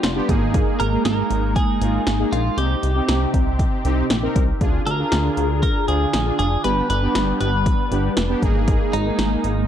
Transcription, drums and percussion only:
0.03 snare, closed hi-hat
0.29 kick, closed hi-hat
0.54 kick, closed hi-hat
0.80 closed hi-hat
1.05 snare, closed hi-hat
1.30 closed hi-hat
1.56 kick, closed hi-hat
1.81 closed hi-hat
2.07 snare, closed hi-hat
2.33 closed hi-hat
2.58 closed hi-hat
2.83 closed hi-hat
3.09 snare, closed hi-hat
3.34 kick, closed hi-hat
3.59 kick, closed hi-hat
3.85 closed hi-hat
4.10 snare, closed hi-hat
4.36 kick, closed hi-hat
4.61 kick, closed hi-hat
4.87 closed hi-hat
5.12 snare, closed hi-hat
5.37 closed hi-hat
5.63 kick, closed hi-hat
5.88 closed hi-hat
6.13 snare, closed hi-hat
6.39 closed hi-hat
6.64 closed hi-hat
6.90 closed hi-hat
7.15 snare, closed hi-hat
7.41 closed hi-hat
7.66 kick, closed hi-hat
7.92 closed hi-hat
8.17 snare, closed hi-hat
8.42 kick, closed hi-hat
8.68 kick, closed hi-hat
8.93 closed hi-hat
9.19 snare, closed hi-hat
9.44 closed hi-hat

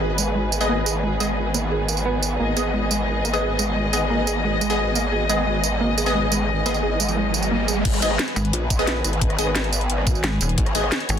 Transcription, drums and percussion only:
0.18 tambourine
0.52 tambourine
0.61 tambourine
0.86 tambourine
1.20 tambourine
1.54 tambourine
1.88 tambourine
1.97 tambourine
2.23 tambourine
2.57 tambourine
2.91 tambourine
3.25 tambourine
3.33 tambourine
3.59 tambourine
3.93 tambourine
4.27 tambourine
4.61 tambourine
4.70 tambourine
4.95 tambourine
5.29 tambourine
5.64 tambourine
5.98 tambourine
6.06 tambourine
6.32 tambourine
6.66 tambourine
6.74 tambourine
7.00 tambourine
7.08 tambourine
7.34 tambourine
7.43 tambourine
7.68 tambourine
7.85 kick, closed hi-hat, crash
7.94 cross-stick, closed hi-hat
8.02 closed hi-hat, tambourine
8.11 cross-stick
8.19 snare, closed hi-hat
8.28 closed hi-hat
8.36 closed hi-hat, tambourine
8.45 closed hi-hat
8.53 closed hi-hat
8.70 kick, closed hi-hat, tambourine
8.79 tambourine
8.87 snare, closed hi-hat
9.04 cross-stick, closed hi-hat, tambourine
9.13 closed hi-hat
9.21 kick, closed hi-hat
9.30 cross-stick, closed hi-hat
9.39 closed hi-hat, tambourine
9.47 cross-stick
9.56 snare, closed hi-hat
9.64 closed hi-hat
9.73 closed hi-hat, tambourine
9.81 closed hi-hat
9.90 closed hi-hat
9.98 cross-stick
10.07 kick, closed hi-hat, tambourine
10.15 tambourine
10.24 snare, closed hi-hat
10.41 closed hi-hat, tambourine
10.49 closed hi-hat
10.58 kick, closed hi-hat
10.66 cross-stick, closed hi-hat
10.75 closed hi-hat, tambourine
10.83 cross-stick
10.92 snare, closed hi-hat
11.00 closed hi-hat
11.09 closed hi-hat, tambourine

